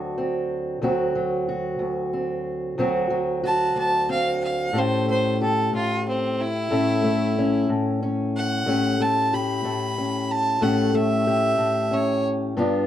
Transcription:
0.00 0.80 D2 medium
0.00 0.81 F#3 medium
0.00 0.17 C4 medium
0.00 0.79 F#4 medium
0.18 0.79 C4 medium
0.82 1.78 D2 medium
0.82 1.14 F#3 medium
0.82 2.12 C4 medium
0.82 1.47 F#4 medium
1.15 2.77 F#3 medium
1.49 2.79 F#4 medium
1.79 2.77 D2 medium
2.13 2.78 C4 medium
2.78 3.73 D2 medium
2.78 3.09 F#3 medium
2.78 4.08 C4 medium
2.78 3.42 F#4 medium
3.10 4.74 F#3 medium
3.43 4.71 F#4 medium
3.43 3.77 A5 medium
3.75 4.74 D2 medium
3.75 4.09 A5 medium
4.09 4.71 C4 medium
4.09 4.42 F5 medium
4.44 4.79 F5 medium
4.73 5.72 A2 medium
4.73 5.07 A3 medium
4.73 6.71 C#4 medium
4.73 5.41 G4 medium
4.78 5.08 C5 medium
5.08 6.71 A3 medium
5.08 5.41 C5 medium
5.41 8.68 G4 medium
5.41 5.73 A4 medium
5.73 6.70 A2 medium
5.73 6.06 F4 medium
6.09 6.42 C4 medium
6.41 7.66 E4 loud
6.71 7.68 A2 medium
6.71 7.03 A3 medium
6.71 7.37 C#4 medium
7.04 8.63 A3 medium
7.39 8.01 C#4 medium
7.69 8.65 A2 medium
8.03 8.63 C#4 medium
8.36 9.03 F#5 medium
8.66 9.63 A2 medium
8.66 8.99 A3 medium
8.66 9.97 C#4 medium
8.66 9.33 G4 medium
9.00 10.61 A3 medium
9.00 9.36 A5 loud
9.34 10.63 G4 medium
9.34 10.33 B5 medium
9.65 10.60 A2 medium
9.98 10.61 C#4 medium
10.32 10.64 A5 loud
10.61 11.57 A2 medium
10.61 10.93 A3 medium
10.61 11.90 C#4 medium
10.61 11.26 G4 medium
10.61 10.97 F#5 medium
10.94 12.54 A3 medium
10.94 11.95 E5 loud
11.27 12.54 G4 medium
11.58 12.57 A2 medium
11.91 12.54 C#4 medium
11.91 12.25 C#5 loud
12.57 12.87 G2 medium
12.57 12.87 B3 medium
12.57 12.87 D4 medium
12.57 12.87 F4 medium

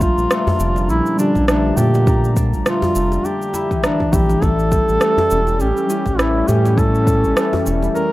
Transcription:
0.00 0.11 A#1 loud
0.00 4.42 A#2 medium
0.00 4.42 F3 medium
0.00 1.15 G3 medium
0.00 8.12 G3 medium
0.00 3.91 G3 medium
0.00 0.30 A3 loud
0.00 0.66 C#4 medium
0.00 1.16 D4 medium
0.00 1.16 F4 medium
0.00 0.86 F4 loud
0.00 1.17 A#5 medium
0.00 kick loud
0.00 shaker medium
0.18 0.27 A#1 medium
0.18 shaker soft
0.29 4.42 D3 medium
0.29 1.48 A3 medium
0.29 cross-stick loud
0.29 shaker soft
0.47 djembe slap medium
0.47 djembe tone medium
0.47 djembe bass loud
0.60 0.90 F1 loud
0.60 0.95 D4 medium
0.60 shaker medium
0.76 djembe slap soft
0.76 shaker soft
0.89 1.02 A#1 medium
0.89 1.24 C#4 medium
0.89 1.17 E4 loud
0.89 shaker soft
1.06 shaker soft
1.16 2.04 D3 medium
1.16 2.03 G3 medium
1.16 1.77 D4 medium
1.16 1.46 D4 loud
1.16 2.04 F4 medium
1.16 shaker medium
1.20 2.05 G4 medium
1.35 1.72 A#1 medium
1.35 kick medium
1.35 djembe slap soft
1.35 shaker soft
1.48 2.66 A3 medium
1.48 1.78 D4 loud
1.48 cross-stick loud
1.48 shaker soft
1.77 2.55 A#2 loud
1.77 2.06 D4 medium
1.77 2.36 G4 loud
1.77 djembe tone medium
1.77 shaker medium
1.94 djembe slap medium
1.94 shaker soft
2.05 3.50 G3 medium
2.05 3.51 D4 medium
2.05 2.36 D4 medium
2.05 3.51 F4 medium
2.05 3.52 A#5 medium
2.05 kick loud
2.05 djembe tone medium
2.05 shaker soft
2.24 shaker soft
2.37 3.24 D4 medium
2.37 kick loud
2.37 shaker medium
2.53 2.63 A#1 medium
2.53 shaker soft
2.66 2.95 A3 medium
2.66 3.27 F4 loud
2.66 cross-stick loud
2.66 shaker soft
2.82 djembe slap medium
2.82 djembe tone medium
2.82 djembe bass medium
2.82 shaker soft
2.95 3.18 F1 medium
2.95 3.84 A3 medium
2.95 shaker medium
3.12 djembe slap medium
3.12 shaker soft
3.24 5.37 D4 medium
3.24 3.83 G4 loud
3.24 djembe tone soft
3.24 shaker soft
3.42 shaker soft
3.54 4.13 E4 medium
3.54 djembe slap medium
3.54 shaker medium
3.71 4.47 E3 loud
3.71 kick medium
3.71 shaker soft
3.82 4.38 G3 medium
3.82 4.42 A3 medium
3.82 4.39 D4 medium
3.82 4.15 D4 loud
3.82 4.40 A#5 medium
3.82 cross-stick loud
3.82 shaker soft
4.00 kick medium
4.00 djembe tone medium
4.13 4.36 A#1 loud
4.13 6.75 E4 medium
4.13 4.44 G4 loud
4.13 kick loud
4.13 shaker medium
4.29 djembe slap medium
4.29 shaker soft
4.39 4.82 A1 medium
4.39 5.85 G3 medium
4.39 5.01 A3 loud
4.39 5.86 C#4 medium
4.39 5.87 E4 medium
4.39 5.62 A4 loud
4.39 kick loud
4.39 djembe tone medium
4.39 shaker soft
4.44 5.87 A4 medium
4.59 shaker soft
4.72 8.12 G3 medium
4.72 kick loud
4.72 shaker medium
4.81 8.12 E3 medium
4.89 4.98 A1 medium
4.89 shaker soft
5.01 6.18 A3 medium
5.01 cross-stick loud
5.01 shaker soft
5.18 djembe slap medium
5.18 djembe tone medium
5.18 djembe bass medium
5.31 5.62 E1 medium
5.31 8.12 C#4 medium
5.31 5.60 C#4 medium
5.31 shaker medium
5.47 djembe slap soft
5.47 shaker soft
5.60 5.73 A1 loud
5.60 5.89 C#4 medium
5.60 6.20 G4 loud
5.60 shaker soft
5.77 shaker soft
5.87 6.73 G3 medium
5.87 6.74 C#4 medium
5.87 6.48 C#4 medium
5.87 6.75 E4 medium
5.87 6.75 G4 medium
5.87 shaker medium
6.06 6.43 A1 medium
6.06 kick medium
6.06 djembe slap medium
6.06 shaker soft
6.19 7.36 A3 medium
6.19 6.50 E4 medium
6.19 cross-stick loud
6.19 shaker soft
6.48 7.26 A2 loud
6.48 6.77 C#4 medium
6.48 6.79 G4 medium
6.48 djembe tone medium
6.48 shaker medium
6.65 djembe slap medium
6.65 shaker soft
6.76 8.12 G3 medium
6.76 8.12 C#4 medium
6.76 7.07 C#4 medium
6.76 8.12 E4 medium
6.76 7.69 A4 loud
6.76 kick loud
6.76 djembe tone medium
6.76 shaker soft
6.80 8.12 A4 medium
6.95 shaker soft
7.07 7.95 C#4 medium
7.07 kick loud
7.07 shaker medium
7.24 7.34 A1 medium
7.24 shaker soft
7.36 7.65 A3 medium
7.36 cross-stick loud
7.36 shaker soft
7.53 djembe slap medium
7.53 djembe tone medium
7.53 djembe bass medium
7.66 7.89 E1 medium
7.66 8.12 A3 medium
7.66 shaker medium
7.82 djembe slap soft
7.82 shaker soft
7.95 8.12 C#4 medium
7.95 8.12 A#4 loud
7.95 djembe tone soft
7.95 shaker soft

